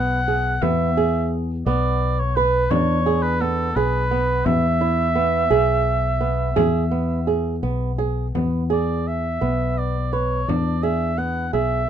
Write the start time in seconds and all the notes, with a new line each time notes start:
Already playing: B1 B3 F#5
0.28 G#4
0.62 E2 B3 E5, frame drum
0.97 G#4, frame drum
1.66 B1 B3 D5, frame drum
2.01 frame drum
2.19 C#5
2.36 B4
2.71 E2 D4 C#5, frame drum
3.06 G#4
3.23 B4
3.40 B3 A4
3.75 B1 G#4 B4
4.11 B3, frame drum
4.45 E2 E5, frame drum
4.81 E4
5.15 B3, frame drum
5.50 B1 G#4
6.21 B3
6.56 E2 G#4, frame drum
6.91 B3
7.27 G#4
7.63 B1 B3, frame drum
7.98 G#4, frame drum
8.35 E2 B3, frame drum
8.70 G#4 D5
9.07 E5
9.41 B1 B3
9.78 D5
10.13 B4 C#5, frame drum
10.48 E2 D4 D5, frame drum
10.83 G#4 E5
11.18 B3 F#5
11.53 B1 G#4 E5